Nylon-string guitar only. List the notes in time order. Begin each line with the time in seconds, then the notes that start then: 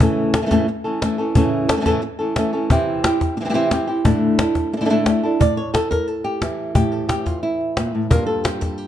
0.00 A2 C#3 E3 A3 C#4 A4
0.34 E3 A3 C#4 A4
0.41 C#3 E3 A3 C#4 A4
0.46 C#3 E3 A3 C#4 A4
0.51 A2 C#3 E3 A3 C#4 A4
0.68 muted nylon-string guitar stroke
0.84 E3 A3 C#4 A4
1.02 E3 A3 C#4 A4
1.18 E3 A3 C#4 A4
1.35 A2 C#3 E3 A3 C#4 A4
1.68 E3 A3 C#4 A4
1.76 C#3 E3 A3 C#4 A4
1.80 C#3 E3 A3 C#4 A4
1.85 A2 C#3 E3 A3 C#4 A4
2.02 muted nylon-string guitar stroke
2.19 E3 A3 C#4 A4
2.36 E3 A3 C#4 A4
2.53 E3 A3 C#4 A4
2.70 C3 E3 C4 E4 G4
3.04 C4 E4 G4
3.37 E3 C4, muted nylon-string guitar stroke
3.41 E3 E4 G4
3.45 C4 E4 G4
3.50 E3 C4 E4 G4
3.54 C3 E3 C4 E4 G4
3.70 E3 C4 E4 G4
3.87 C4 E4 G4
4.05 A2 D3 A3 D4 E4 A4
4.39 A3 D4 E4 A4
4.73 D4 A4, muted nylon-string guitar stroke
4.81 D3 A3 D4 E4 A4
4.85 A2 D3 A3 D4 E4 A4
4.90 D3 A3 D4 E4 A4
5.06 A3 D4 E4 A4
5.23 A3 D4 E4 A4
5.40 A2 D5
5.57 C#5
5.74 A4
5.91 A#4
6.07 A4
6.24 G4
6.42 E3
6.75 A2 G4
6.92 A4
7.09 G4
7.26 F4
7.43 E4
7.78 A#2
7.95 A2
8.10 G2 G3 A#3 F4 A#4
8.26 A4
8.44 G4
8.61 A4
8.78 G4